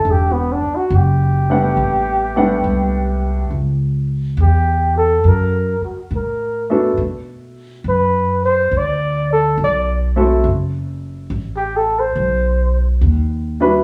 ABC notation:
X:1
M:4/4
L:1/16
Q:"Swing" 1/4=70
K:Bphr
V:1 name="Muted trumpet"
G B, D F G12 | z4 G2 A2 _B2 F2 B2 z2 | z4 B2 c2 d2 A2 d2 z2 | z4 z G A c4 z4 z |]
V:2 name="Grand piano"
z6 [G,A,B,Df]2 z2 [G,A,B,Df]2 z4 | z12 z2 [A,B,DFA]2 | z12 z2 [A,CEFA]2 | z12 z2 [G,DEFB]2 |]
V:3 name="Upright bass" clef=bass
E,,,2 z2 F,,,4 A,,,4 C,,4 | ^C,,4 E,,4 F,,2 z2 A,,4 | B,,4 F,,4 D,,4 B,,,4 | F,,,4 A,,,4 B,,,4 ^D,,4 |]